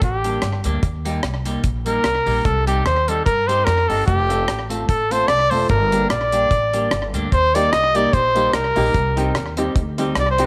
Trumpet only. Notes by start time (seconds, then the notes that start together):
0.04 G4
1.87 A#4
2.45 A4
2.67 G4
2.86 C5
3.08 A4
3.25 A#4
3.47 C5
3.64 A#4
3.88 A4
4.06 G4
4.88 A4
5.12 C5
5.28 D5
5.50 C5
5.70 A#4
6.10 D5
7.32 C5
7.55 D5
7.72 D#5
7.96 D5
8.13 C5
8.54 A#4
10.19 D5
10.31 C5